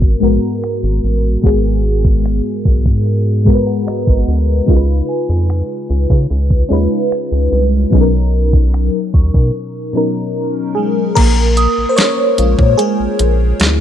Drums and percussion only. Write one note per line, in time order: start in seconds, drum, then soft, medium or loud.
0.02 kick medium
0.64 finger snap loud
1.44 kick loud
1.44 closed hi-hat medium
1.84 closed hi-hat medium
2.05 kick medium
2.25 finger snap loud
2.25 closed hi-hat medium
2.65 kick medium
2.65 closed hi-hat medium
2.86 kick medium
3.06 closed hi-hat medium
3.46 kick medium
3.46 closed hi-hat medium
3.87 finger snap loud
3.87 closed hi-hat medium
4.07 kick medium
4.27 closed hi-hat medium
4.68 kick loud
4.68 closed hi-hat medium
5.08 closed hi-hat medium
5.49 finger snap loud
5.49 closed hi-hat medium
5.89 closed hi-hat medium
6.10 kick medium
6.30 closed hi-hat medium
6.50 kick medium
6.71 closed hi-hat medium
7.11 finger snap loud
7.11 closed hi-hat medium
7.51 closed hi-hat medium
7.92 kick loud
7.92 closed hi-hat medium
8.33 closed hi-hat medium
8.53 kick medium
8.73 finger snap loud
8.73 closed hi-hat medium
8.87 closed hi-hat medium
9.00 closed hi-hat medium
9.14 kick medium
9.14 closed hi-hat medium
9.34 kick medium
11.17 kick loud
11.17 closed hi-hat medium
11.17 crash loud
11.57 closed hi-hat medium
11.98 snare loud
11.98 closed hi-hat medium
12.38 closed hi-hat medium
12.59 kick medium
12.79 closed hi-hat medium
13.19 closed hi-hat medium
13.60 snare loud
13.60 closed hi-hat medium